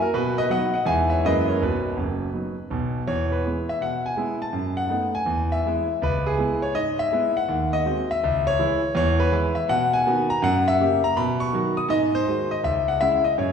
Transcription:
0.02 0.14 F#4 medium
0.02 0.14 A#4 medium
0.14 0.45 B2 medium
0.14 0.36 F#4 medium
0.14 0.37 B4 medium
0.38 0.50 B4 medium
0.38 0.50 D#5 loud
0.50 0.70 F#3 medium
0.50 0.70 B3 medium
0.50 0.70 D#4 medium
0.50 0.73 D#5 medium
0.50 0.72 F#5 loud
0.74 0.86 D#5 medium
0.74 0.87 F#5 medium
0.86 1.17 E2 medium
0.86 1.06 G#3 soft
0.86 1.06 B3 soft
0.86 1.07 D#4 medium
0.86 1.08 E5 medium
0.86 1.10 G#5 loud
1.10 1.23 C#5 medium
1.10 1.23 E5 medium
1.25 1.55 F#2 medium
1.25 1.45 G#3 medium
1.25 1.45 A#3 medium
1.25 1.45 E4 medium
1.25 1.47 B4 medium
1.25 1.48 D#5 loud
1.48 1.61 A#4 soft
1.48 1.61 C#5 medium
1.62 1.91 B1 medium
1.62 1.91 B2 medium
1.62 2.68 F#4 medium
1.62 2.72 B4 medium
1.97 2.26 F#1 medium
1.97 2.26 F#2 medium
2.34 2.54 F#3 soft
2.34 2.54 B3 soft
2.34 2.54 D#4 soft
2.70 3.00 B1 medium
2.70 3.00 B2 medium
3.07 3.39 E2 medium
3.07 3.31 C#5 medium
3.32 3.68 B4 medium
3.45 3.65 G#3 soft
3.45 3.65 B3 soft
3.45 3.65 E4 soft
3.69 3.81 E5 medium
3.81 4.12 B2 medium
3.81 4.05 F#5 medium
4.06 4.42 G#5 medium
4.16 4.37 G#3 soft
4.16 4.37 B3 soft
4.16 4.38 E4 medium
4.42 4.78 A5 medium
4.53 4.85 F#2 medium
4.77 5.14 F#5 medium
4.90 5.10 A3 soft
4.90 5.10 B3 soft
4.90 5.10 D#4 soft
5.15 5.51 G#5 medium
5.26 5.58 E2 medium
5.52 6.01 E5 medium
5.66 5.86 G#3 soft
5.66 5.86 B3 soft
5.66 5.86 E4 medium
6.02 6.33 C#2 medium
6.02 6.26 B4 medium
6.26 6.63 G#4 medium
6.38 6.58 G#3 medium
6.38 6.58 B3 soft
6.38 6.59 E4 medium
6.62 6.75 C#5 medium
6.74 7.06 G#2 medium
6.74 6.99 D#5 loud
6.99 7.36 E5 loud
7.12 7.32 G#3 soft
7.12 7.32 B3 medium
7.12 7.33 E4 medium
7.37 7.73 F#5 medium
7.49 7.80 D#2 medium
7.73 8.10 D#5 loud
7.85 8.06 G#3 soft
7.85 8.06 C4 medium
7.85 8.06 F#4 medium
8.11 8.47 E5 medium
8.24 8.54 C#2 medium
8.47 8.95 C#5 loud
8.59 8.79 E3 medium
8.59 8.79 G#3 medium
8.59 8.80 E4 medium
8.95 9.26 E2 loud
8.95 9.20 C#5 loud
9.20 9.56 B4 loud
9.32 9.52 E3 medium
9.32 9.52 G#3 medium
9.32 9.53 E4 medium
9.55 9.69 E5 medium
9.69 10.00 B2 medium
9.69 9.93 F#5 loud
9.93 10.30 G#5 loud
10.07 10.27 D#3 medium
10.07 10.27 B3 medium
10.07 10.27 F#4 medium
10.30 10.43 A#5 loud
10.42 10.74 F#2 loud
10.42 10.67 F#5 loud
10.68 11.04 E5 loud
10.80 11.00 C#3 medium
10.80 11.00 A#3 medium
10.80 11.01 G4 medium
11.04 11.17 A#5 loud
11.17 11.48 B2 medium
11.17 11.41 B5 loud
11.40 11.77 C#6 loud
11.53 11.73 D#3 medium
11.53 11.74 F#3 medium
11.53 11.74 F#4 medium
11.77 11.90 D#6 loud
11.88 12.20 G#2 loud
11.88 12.14 D#5 loud
12.15 12.51 C5 loud
12.27 12.47 D#3 soft
12.27 12.48 G#3 medium
12.27 12.48 F#4 medium
12.51 12.64 D#5 medium
12.64 12.95 C#2 medium
12.64 12.88 E5 loud
12.88 13.01 F#5 medium
13.00 13.21 C#3 medium
13.00 13.21 G#3 medium
13.00 13.21 E4 medium
13.00 13.25 E5 loud
13.24 13.37 D#5 medium
13.38 13.52 F#2 medium
13.38 13.52 C#5 medium

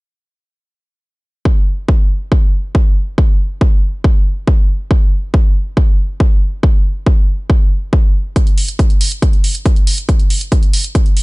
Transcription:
1.45 kick loud
1.89 kick loud
2.32 kick loud
2.75 kick loud
3.18 kick loud
3.61 kick loud
4.04 kick loud
4.48 kick loud
4.91 kick loud
5.34 kick loud
5.77 kick loud
6.20 kick loud
6.63 kick loud
7.06 kick loud
7.50 kick loud
7.93 kick loud
8.36 kick loud
8.36 closed hi-hat soft
8.47 closed hi-hat soft
8.58 open hi-hat loud
8.68 closed hi-hat soft
8.79 kick loud
8.79 closed hi-hat soft
8.90 closed hi-hat soft
9.01 open hi-hat loud
9.12 closed hi-hat soft
9.22 kick loud
9.22 closed hi-hat soft
9.33 closed hi-hat soft
9.44 open hi-hat loud
9.55 closed hi-hat soft
9.66 kick loud
9.66 closed hi-hat soft
9.76 closed hi-hat soft
9.87 open hi-hat medium
9.98 closed hi-hat soft
10.09 kick loud
10.09 closed hi-hat medium
10.20 closed hi-hat soft
10.30 open hi-hat loud
10.41 closed hi-hat soft
10.52 kick loud
10.52 closed hi-hat soft
10.63 closed hi-hat soft
10.73 open hi-hat loud
10.84 closed hi-hat soft
10.95 kick loud
10.95 closed hi-hat soft
11.06 closed hi-hat soft
11.17 open hi-hat medium

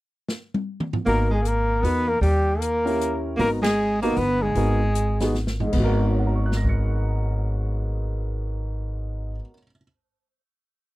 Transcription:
0.28 snare medium
0.54 high tom medium
0.80 mid tom medium
0.93 floor tom medium
1.05 1.80 G#1 medium
1.05 1.29 A#3 medium
1.05 1.28 B3 soft
1.05 1.29 D#4 soft
1.05 1.29 F#4 soft
1.05 1.30 A#4 medium
1.05 1.29 A#4 soft
1.05 open hi-hat soft
1.30 1.44 G#3 medium
1.30 1.49 G#4 medium
1.42 1.83 A#3 medium
1.42 closed hi-hat soft
1.47 1.86 A#4 medium
1.81 2.20 E2 medium
1.81 2.09 B3 medium
1.81 2.06 B3 soft
1.81 2.06 D#4 soft
1.81 2.06 F#4 soft
1.81 2.07 A#4 soft
1.81 2.10 B4 medium
1.81 open hi-hat soft
2.07 2.21 A#3 medium
2.07 2.22 A#4 loud
2.21 3.35 D#2 medium
2.21 2.60 G3 medium
2.21 2.63 G4 medium
2.21 open hi-hat soft
2.59 3.24 A#3 medium
2.59 3.25 A#4 medium
2.59 closed hi-hat soft
2.85 3.36 C#4 medium
2.85 3.37 E4 soft
2.85 3.36 G4 soft
2.85 3.36 A#4 medium
2.85 open hi-hat soft
3.01 closed hi-hat soft
3.37 4.13 G#1 medium
3.37 3.48 A#3 medium
3.37 3.62 B3 soft
3.37 3.62 D#4 soft
3.37 3.62 F#4 soft
3.37 3.50 A#4 medium
3.37 3.62 A#4 medium
3.37 open hi-hat soft
3.62 3.99 G#3 medium
3.62 4.00 G#4 medium
3.62 snare medium
3.62 ride medium
4.02 4.18 A#3 medium
4.02 4.16 B3 medium
4.02 4.16 D#4 medium
4.02 4.16 F#4 medium
4.02 4.20 A#4 medium
4.02 4.17 A#4 medium
4.02 open hi-hat soft
4.17 4.54 G1 medium
4.17 4.43 B3 medium
4.17 4.44 B4 medium
4.17 open hi-hat soft
4.42 5.34 G#3 medium
4.42 5.35 G#4 medium
4.55 5.69 G#1 medium
4.55 4.79 B3 soft
4.55 4.79 D#4 soft
4.55 4.79 F#4 medium
4.55 4.79 A#4 medium
4.55 open hi-hat soft
4.95 closed hi-hat soft
5.20 5.33 B3 medium
5.20 5.34 D#4 medium
5.20 5.34 F#4 medium
5.20 5.34 G#4 medium
5.20 snare medium
5.20 open hi-hat soft
5.35 snare soft
5.47 snare medium
5.60 9.30 G#2 medium
5.60 floor tom medium
5.66 9.36 G#3 medium
5.72 9.39 G#1 medium
5.72 9.41 B3 medium
5.72 kick soft
5.72 crash medium
5.79 9.48 F#4 medium
5.84 9.53 A#4 medium
6.11 9.54 C#5 soft
6.19 9.58 F#5 soft
6.27 9.61 A#5 soft
6.35 9.66 C#6 soft
6.46 9.71 F#6 soft
6.52 snare soft
6.57 9.76 A#6 soft
6.65 kick medium
6.69 9.82 C#7 soft

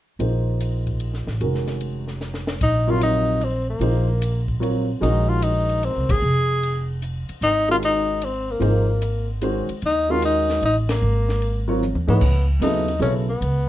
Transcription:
0.19 1.23 A#1 medium
0.19 1.32 F3 soft
0.19 1.32 A#3 soft
0.19 1.32 D#4 soft
0.19 1.32 G#4 soft
0.19 1.33 C5 medium
0.19 ride soft
0.60 hi-hat pedal soft
0.60 ride soft
0.87 kick soft
0.87 ride soft
1.00 ride soft
1.14 snare soft
1.27 1.39 A1 medium
1.27 snare soft
1.40 2.57 F1 medium
1.40 2.53 D#3 soft
1.40 2.53 G#3 soft
1.40 2.53 C#4 soft
1.40 2.53 F#4 soft
1.40 2.53 A#4 soft
1.40 ride soft
1.55 snare soft
1.67 snare soft
1.67 ride soft
1.81 ride medium
2.08 snare soft
2.21 snare soft
2.21 hi-hat pedal soft
2.34 snare soft
2.47 snare medium
2.61 3.77 A#1 medium
2.61 2.92 D#4 medium
2.61 kick medium
2.61 ride medium
2.87 3.39 C3 medium
2.87 3.38 F#3 medium
2.87 3.38 F4 medium
2.87 3.02 F4 medium
2.87 3.39 A#4 medium
2.87 3.39 C#5 medium
3.01 3.46 D#4 medium
3.01 hi-hat pedal medium
3.01 ride medium
3.41 3.69 C4 medium
3.41 ride medium
3.70 4.45 A#3 medium
3.79 4.96 A#1 medium
3.79 4.05 F3 medium
3.79 4.05 A#3 soft
3.79 4.05 D#4 medium
3.79 4.05 G#4 medium
3.79 4.05 C5 medium
3.79 ride medium
4.22 hi-hat pedal medium
4.22 ride medium
4.48 kick soft
4.60 4.85 F#3 medium
4.60 4.85 C4 soft
4.60 4.85 F4 medium
4.60 4.85 A#4 medium
4.60 4.85 C#5 medium
4.60 ride medium
5.00 5.91 A#1 medium
5.00 6.13 D#3 medium
5.00 6.13 G#3 medium
5.00 6.13 C#4 medium
5.00 5.31 D#4 medium
5.00 6.13 F#4 medium
5.00 6.13 A#4 medium
5.00 ride medium
5.29 5.45 F4 medium
5.42 5.87 D#4 medium
5.42 hi-hat pedal medium
5.42 ride medium
5.69 ride soft
5.83 6.13 C4 medium
5.83 ride medium
5.96 6.08 C2 medium
6.09 6.21 A1 medium
6.09 6.90 G#4 loud
6.09 kick medium
6.09 ride medium
6.22 7.24 F1 medium
6.63 ride medium
7.02 hi-hat pedal soft
7.02 ride medium
7.29 muted upright bass stroke soft
7.29 ride soft
7.41 8.57 G#1 medium
7.41 7.67 D#4 loud
7.41 ride medium
7.68 8.19 D#3 medium
7.68 8.19 G#3 soft
7.68 8.19 C#4 soft
7.68 7.77 F4 medium
7.68 8.19 F#4 soft
7.68 8.20 A#4 medium
7.83 8.26 D#4 medium
7.83 hi-hat pedal medium
7.83 ride medium
8.22 8.53 C4 medium
8.22 ride medium
8.51 9.30 A#3 medium
8.60 9.64 G#1 medium
8.60 8.85 F3 medium
8.60 8.85 A#3 medium
8.60 8.85 D#4 medium
8.60 8.85 G#4 medium
8.60 8.85 C5 medium
8.60 ride soft
9.02 hi-hat pedal medium
9.02 ride medium
9.41 9.66 D#3 medium
9.41 9.65 G#3 medium
9.41 9.66 C#4 medium
9.41 9.66 F#4 medium
9.41 9.66 C5 medium
9.41 hi-hat pedal medium
9.41 ride medium
9.69 muted upright bass stroke soft
9.69 ride soft
9.82 10.58 D#2 medium
9.82 10.13 D#4 loud
9.82 ride soft
10.09 10.59 D#3 medium
10.09 10.59 G#3 medium
10.09 10.60 C#4 medium
10.09 10.23 F4 medium
10.09 10.60 F#4 medium
10.09 10.60 A#4 medium
10.22 10.61 D#4 loud
10.22 hi-hat pedal medium
10.22 ride medium
10.50 snare soft
10.50 ride soft
10.62 10.99 A1 medium
10.62 10.77 D#4 medium
10.62 ride soft
10.89 11.65 A#3 medium
10.89 snare medium
10.89 ride medium
11.02 11.91 G#1 medium
11.29 snare soft
11.42 ride soft
11.68 11.80 F#3 medium
11.68 11.80 C4 medium
11.68 11.81 F4 medium
11.68 11.80 A#4 medium
11.68 11.80 C#5 medium
11.83 hi-hat pedal soft
11.83 mid tom soft
11.94 12.07 D#2 medium
11.94 mid tom soft
12.07 12.20 G#2 medium
12.07 12.20 E3 medium
12.07 12.20 A3 medium
12.07 12.46 B3 medium
12.07 12.20 D#4 medium
12.07 12.20 G#4 medium
12.07 12.20 C#5 medium
12.07 mid tom medium
12.21 12.59 C#2 medium
12.21 kick medium
12.21 crash medium
12.60 12.99 D#2 medium
12.60 12.85 C#3 medium
12.60 12.85 F#3 medium
12.60 12.86 B3 medium
12.60 12.99 D#4 medium
12.60 12.86 E4 medium
12.60 12.86 A4 medium
12.60 hi-hat pedal medium
12.60 ride medium
12.88 ride soft
13.00 13.39 B1 medium
13.00 13.25 C#3 medium
13.00 13.25 F#3 medium
13.00 13.25 B3 medium
13.00 13.14 C#4 medium
13.00 13.25 E4 medium
13.00 13.25 A4 medium
13.00 ride soft
13.30 13.69 B3 medium
13.41 13.69 C#2 medium
13.41 ride medium

